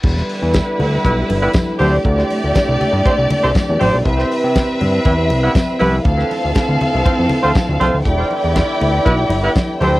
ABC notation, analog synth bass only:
X:1
M:4/4
L:1/16
Q:1/4=120
K:Ephr
V:1 name="Analog synth bass" clef=bass
E,,,2 z E,,2 z D,,2 B,,,2 G,,,2 z2 D,,2 | D,,2 z D,, z C,, z G,, z C,, z C,, z E,, A,,, B,,, | C,,2 z C,2 z G,,2 E,,2 C,,2 z2 C,,2 | D,,2 z D,, z D,, z C,, z F,, z D,, z D,, C,, D,, |
E,,,2 z E,,2 z D,,2 B,,,2 G,,,2 z2 D,,2 |]